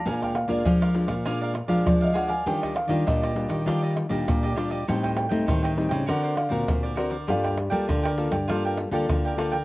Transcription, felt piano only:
X:1
M:4/4
L:1/16
Q:1/4=100
K:Bb
V:1 name="Felt piano"
_a g f d4 z4 z d e _g a | g2 f d e6 z6 | z2 g6 ^f2 ^e4 d2 | f2 z12 z2 |]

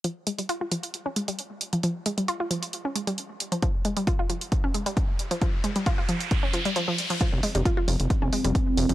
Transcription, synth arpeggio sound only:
X:1
M:4/4
L:1/16
Q:1/4=134
K:Fm
V:1 name="Synth arpeggio sound" clef=bass
F, z A, G, F F F, z2 D A, G, z3 F, | F, z A, G, F F F, z2 D A, G, z3 F, | F, z A, G, F F F, z2 D A, G, z3 F, | F, z A, G, F F F, z2 D F, G, F, F, z F, |
F, z A, G, F F F, z2 D A, G, z3 F, |]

